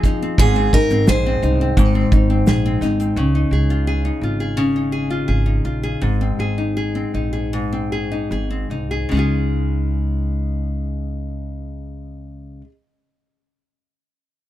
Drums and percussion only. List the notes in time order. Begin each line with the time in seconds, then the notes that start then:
0.03 kick, snare, shaker
0.38 kick, shaker
0.73 kick, shaker
0.90 shaker
1.07 snare, shaker
1.43 shaker
1.77 kick, shaker
2.12 kick, shaker
2.47 snare, shaker
2.82 snare, shaker
3.00 shaker